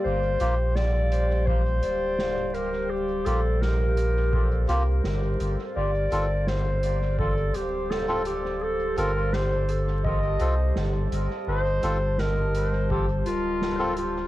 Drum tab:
HH |-x-x-x-x|-x-x-x-x|-x-x-x-x|-x-x-x-x|
SD |--o---o-|--o---o-|--o---o-|--o---o-|
BD |----o---|----o---|----o---|----o---|

HH |-x-x-x-x|
SD |--o---o-|
BD |----o---|